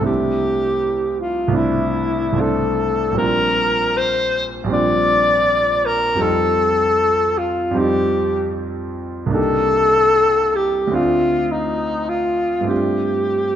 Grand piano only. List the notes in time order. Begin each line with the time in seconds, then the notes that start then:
Already playing: C2 D#2 G3 D#4 F4
0.00 A3 C4 D4
0.05 E4
1.48 C2 A3 C4
1.54 D4 E4
2.32 C2 A3 C4
2.38 D4 E4
3.12 A#1 G3 C4
3.18 D4 F4
4.64 A#1 G3 C4
4.70 D4 F4
6.15 F2 G3 C4
6.20 D#4 F4
7.71 F2 G3 C4
7.77 D#4 F4
9.26 C2 A#3
9.31 D4 D#4 G4
10.87 D2 A3
10.91 C4 D4
10.96 F4
12.61 G2 A3 C4
12.67 D4 F4